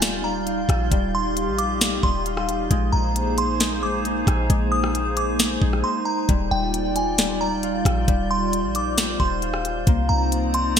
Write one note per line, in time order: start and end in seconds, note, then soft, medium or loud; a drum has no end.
0.00 0.65 D#1 loud
0.00 2.67 G3 medium
0.00 0.23 G3 medium
0.00 1.38 D#4 medium
0.00 9.83 D#4 medium
0.00 0.90 F4 medium
0.00 2.67 F4 medium
0.00 0.90 D5 medium
0.00 2.67 F5 medium
0.00 0.22 G#5 medium
0.00 2.67 G6 medium
0.00 snare loud
0.00 closed hi-hat medium
0.24 0.91 G3 medium
0.24 0.45 A#5 medium
0.47 2.26 F4 medium
0.47 closed hi-hat medium
0.69 0.90 A#1 loud
0.69 kick medium
0.69 cross-stick loud
0.69 closed hi-hat medium
0.92 1.49 D#1 loud
0.92 1.80 G3 loud
0.92 2.69 G4 medium
0.92 2.69 D#5 medium
0.92 kick loud
0.92 closed hi-hat medium
1.15 1.56 C6 medium
1.37 closed hi-hat medium
1.48 2.01 A#1 loud
1.58 2.01 D6 medium
1.58 closed hi-hat medium
1.81 2.02 G3 medium
1.81 snare loud
1.81 closed hi-hat medium
2.03 2.68 D#1 loud
2.03 2.76 G3 medium
2.03 2.25 C6 medium
2.03 kick loud
2.26 4.78 F4 medium
2.26 closed hi-hat medium
2.37 cross-stick loud
2.49 closed hi-hat medium
2.71 2.92 A#1 loud
2.71 3.59 G#3 loud
2.71 6.25 A#3 medium
2.71 6.25 D#4 medium
2.71 6.25 G#4 medium
2.71 6.25 C5 medium
2.71 6.25 G#5 medium
2.71 kick loud
2.71 closed hi-hat medium
2.92 4.23 A#1 loud
2.92 3.35 A#5 medium
3.16 closed hi-hat medium
3.38 3.80 C6 medium
3.38 closed hi-hat medium
3.60 3.81 G#3 loud
3.60 snare loud
3.60 closed hi-hat medium
3.83 4.48 G#3 medium
3.83 4.04 D6 medium
4.05 5.83 D#4 medium
4.05 closed hi-hat medium
4.27 4.49 A#1 loud
4.27 kick medium
4.27 cross-stick medium
4.27 closed hi-hat medium
4.50 5.58 A#1 loud
4.50 5.38 G#3 loud
4.50 kick loud
4.50 closed hi-hat medium
4.72 5.14 D#6 medium
4.84 cross-stick loud
4.95 closed hi-hat medium
5.17 5.38 D6 medium
5.17 closed hi-hat medium
5.39 5.60 G#3 medium
5.39 snare loud
5.39 closed hi-hat medium
5.62 5.83 A#1 loud
5.62 6.34 G#3 medium
5.62 kick loud
5.73 cross-stick medium
5.84 8.54 D#4 medium
5.84 6.05 C6 medium
6.05 6.27 A#5 medium
6.29 6.50 D#1 loud
6.29 7.17 G3 loud
6.29 9.84 G3 medium
6.29 9.83 F4 medium
6.29 9.84 F4 medium
6.29 8.06 D5 medium
6.29 9.84 D5 medium
6.29 9.83 G6 medium
6.29 kick loud
6.29 closed hi-hat medium
6.51 7.82 D#1 loud
6.51 6.93 G5 medium
6.74 closed hi-hat medium
6.96 7.38 G#5 medium
6.96 closed hi-hat medium
7.18 7.40 G3 medium
7.18 snare loud
7.18 closed hi-hat medium
7.41 8.07 G3 medium
7.41 7.62 A#5 medium
7.63 9.42 F4 medium
7.63 closed hi-hat medium
7.85 8.07 A#1 loud
7.85 kick medium
7.85 cross-stick loud
7.85 closed hi-hat medium
8.08 8.65 D#1 loud
8.08 8.97 G3 loud
8.08 9.85 C5 medium
8.08 kick loud
8.08 closed hi-hat medium
8.31 8.73 C6 medium
8.53 closed hi-hat medium
8.64 9.17 A#1 loud
8.75 9.18 D6 medium
8.75 closed hi-hat medium
8.98 9.19 G3 medium
8.98 snare loud
8.98 closed hi-hat medium
9.20 9.84 D#1 loud
9.20 9.92 G3 medium
9.20 9.41 C6 medium
9.20 kick loud
9.42 10.80 F4 medium
9.42 closed hi-hat medium
9.54 cross-stick loud
9.65 closed hi-hat medium
9.87 10.09 C2 loud
9.87 10.80 A#3 medium
9.87 10.77 A#3 loud
9.87 10.80 C4 medium
9.87 10.80 D#4 medium
9.87 10.80 C5 medium
9.87 10.80 D5 medium
9.87 10.80 A#5 medium
9.87 kick loud
9.87 closed hi-hat medium
10.09 10.80 C2 loud
10.09 10.51 A#5 medium
10.32 closed hi-hat medium
10.54 10.80 C6 medium
10.54 closed hi-hat medium
10.76 closed hi-hat medium